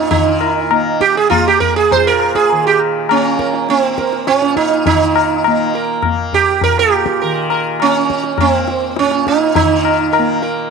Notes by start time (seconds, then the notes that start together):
Already playing: A#2 D#3 A#3
0.11 D#3 D#4, tabla tin, tabla ge
0.41 A#4, tabla na
0.71 A#3, tabla na
1.01 G4, tabla ke
1.15 G#4, tabla te
1.30 A#3 F4, tabla na, tabla ge
1.48 G4
1.60 A#4, tabla ge
1.76 G#4
1.91 A#2 C5, tabla tin, tabla ge
2.07 A#4
2.20 tabla na
2.35 G#4, tabla ke
2.50 D#3, tabla tin
2.67 G4
2.80 tabla na
3.09 A#3 C#4, tabla na
3.39 A#4, tabla ke
3.54 tabla te
3.69 A#3 C#4, tabla te
3.81 C4, tabla te
3.98 A#4, tabla ke
4.13 tabla te
4.27 A#2 C#4, tabla te
4.42 tabla te
4.56 D#4, tabla ke
4.71 tabla te
4.86 D#3 D#4, tabla tin, tabla ge
5.16 tabla na
5.44 A#3, tabla na
5.74 A#4, tabla te
6.02 A#3, tabla na, tabla ge
6.33 G4, tabla ge
6.61 A#2 A#4, tabla tin, tabla ge
6.79 G4
6.91 tabla na
7.06 tabla ke
7.20 D#3 A#4, tabla tin
7.50 A#4, tabla na
7.80 A#3 C#4, tabla na
8.10 tabla ke
8.24 tabla te
8.38 A#3 C#4, tabla na, tabla ge
8.52 C4
8.68 tabla te
8.96 A#2 C#4, tabla te
9.11 tabla te
9.27 D#4, tabla ke
9.41 tabla te
9.55 D#3 D#4, tabla tin, tabla ge
9.85 tabla na
10.13 A#4, tabla na
10.19 A#3
10.42 A#4, tabla te